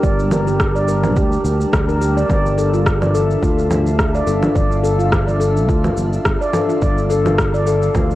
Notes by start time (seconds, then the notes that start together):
Already playing: G3 D4 G4 A#4 A5
0.03 G1 D5, kick, shaker
0.19 shaker
0.31 A#4, low conga, shaker
0.47 G4, shaker
0.60 kick, cross-stick, shaker
0.75 D5, shaker
0.88 A#4, shaker
1.03 low conga, shaker
1.16 D2 G4, kick, shaker
1.32 shaker
1.44 D2, shaker
1.61 shaker
1.73 D2, kick, cross-stick, low conga, shaker
1.89 A#4, shaker
2.01 G4, shaker
2.17 D5, shaker
2.29 G1 D5 E5 F5, kick, low conga, shaker
2.46 shaker
2.58 A4, shaker
2.73 F4, shaker
2.86 kick, cross-stick, shaker
3.02 D5, low conga, shaker
3.14 A4, shaker
3.31 shaker
3.42 D2 F4, kick, shaker
3.59 shaker
3.71 low conga, shaker
3.87 shaker
3.99 kick, cross-stick, shaker
4.15 D5, shaker
4.27 G1 A4, shaker
4.43 F4, low conga, shaker
4.55 G1 D5, kick, shaker
4.72 shaker
4.84 A4, shaker
4.99 F4, shaker
5.12 kick, cross-stick, low conga, shaker
5.27 D5, shaker
5.40 A4, shaker
5.57 shaker
5.68 D2 F4, kick, shaker
5.84 low conga, shaker
5.97 G1, shaker
6.13 shaker
6.25 G1, kick, cross-stick, shaker
6.41 D5, shaker
6.53 A4, low conga, shaker
6.69 F4, shaker
6.82 G1 D5, kick, shaker
6.98 shaker
7.10 A4, shaker
7.26 F4, low conga, shaker
7.38 kick, cross-stick, shaker
7.54 D5, shaker
7.67 A4, shaker
7.83 shaker
7.95 D2 F4, kick, low conga, shaker
8.11 shaker